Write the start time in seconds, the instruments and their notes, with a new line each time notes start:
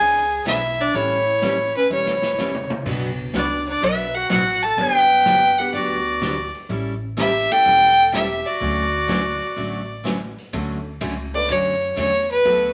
Already playing: steel-string acoustic guitar E3 B3, clarinet G#4, fiddle G#5
0.00 upright bass C#2, steel-string acoustic guitar D4 G#4
0.45 upright bass B1, steel-string acoustic guitar E3 B3 D4 G#4, clarinet E4, fiddle E5, snare, closed hi-hat
0.79 clarinet D4, fiddle D5, open hi-hat
0.93 upright bass A1, steel-string acoustic guitar E3 G3 C#4 E4 A4, upright piano A3 C#4 E4 G4, clarinet E4, fiddle C#5, open hi-hat
1.42 steel-string acoustic guitar E3 G3 C#4 E4 A4, snare, closed hi-hat
1.75 clarinet C#4, fiddle B4, open hi-hat
1.90 upright bass E1, steel-string acoustic guitar E3 G3 C#4 E4 A4, clarinet E4, fiddle C#5
2.06 snare
2.22 snare
2.38 steel-string acoustic guitar E3 G3 C#4 E4 A4, snare
2.54 mid tom
2.70 mid tom
2.85 upright bass B1, steel-string acoustic guitar B2 F#3 B3 D4 F#4, upright piano F#3 B3 D4 F#4, kick, crash
3.33 upright bass C#2, steel-string acoustic guitar B2 F#3 B3 D4 F#4, clarinet D4, fiddle D5, snare, closed hi-hat
3.66 clarinet D4, fiddle D5, open hi-hat
3.81 upright bass B1, steel-string acoustic guitar B2 F#3 B3 D4 F#4, clarinet B4, fiddle E5, open hi-hat
4.14 clarinet F#4, fiddle F#5
4.30 upright bass A1, steel-string acoustic guitar B2 F#3 B3 D4 F#4, clarinet F#4, fiddle F#5, snare, closed hi-hat
4.63 clarinet A4, fiddle A5
4.76 upright bass G1, steel-string acoustic guitar D3 F#3 B3 D4 G4, upright piano F#3 G3 B3 D4, fiddle G#5, open hi-hat
4.81 clarinet C5
4.95 clarinet B4, fiddle G5
5.25 steel-string acoustic guitar D3 F#3 B3 D4 G4, snare, closed hi-hat
5.58 upright piano G3 B3 D4 F#4, clarinet G4, fiddle F#5, open hi-hat
5.74 upright bass D2, steel-string acoustic guitar D3 F#3 B3 D4 G4, clarinet F#4, fiddle D5, open hi-hat
6.21 steel-string acoustic guitar D3 F#3 B3 D4 G4, snare, closed hi-hat
6.54 open hi-hat
6.69 upright bass A1, steel-string acoustic guitar E3 G3 C#4 E4 A4, open hi-hat
7.17 steel-string acoustic guitar E3 G3 C#4 E4 A4, clarinet G4, fiddle E5, snare, closed hi-hat
7.50 upright piano A3 C#4 E4 G4, clarinet A4, fiddle G5
7.65 upright bass E1, steel-string acoustic guitar E3 G3 C#4 E4 A4, open hi-hat
8.12 steel-string acoustic guitar E3 G3 C#4 E4 A4, clarinet G4, fiddle E5, snare, closed hi-hat
8.46 clarinet F#4, fiddle D5, open hi-hat
8.60 upright bass D2, steel-string acoustic guitar D3 F#3 A3 C#4 F#4, upright piano A3 D4 F#4, open hi-hat
9.08 steel-string acoustic guitar D3 F#3 A3 C#4 F#4, snare, closed hi-hat
9.42 open hi-hat
9.57 upright bass A1, steel-string acoustic guitar D3 F#3 A3 C#4 F#4, open hi-hat
10.04 steel-string acoustic guitar D3 F#3 A3 C#4 F#4, snare, closed hi-hat
10.38 open hi-hat
10.53 upright bass D2, steel-string acoustic guitar D3 F#3 A3 C#4 F#4, upright piano A3 C#4 D4 F#4 A4, ride
11.01 upright bass C#2, steel-string acoustic guitar D3 F#3 A3 C#4 F#4, hi-hat pedal, ride
11.34 upright piano A3 C#4 D4 F#4 B4, fiddle D5
11.49 upright bass F#2, steel-string acoustic guitar D3 F#3 A3 C#4 F#4, fiddle C#5, ride
11.96 upright bass E2, steel-string acoustic guitar D3 F#3 A3 C#4 F#4, fiddle C#5, hi-hat pedal, ride
12.31 fiddle B4
12.45 upright bass D2, steel-string acoustic guitar D3 F#3 B3 F#4 A4, upright piano A3 B3 D4 F#4 A4, ride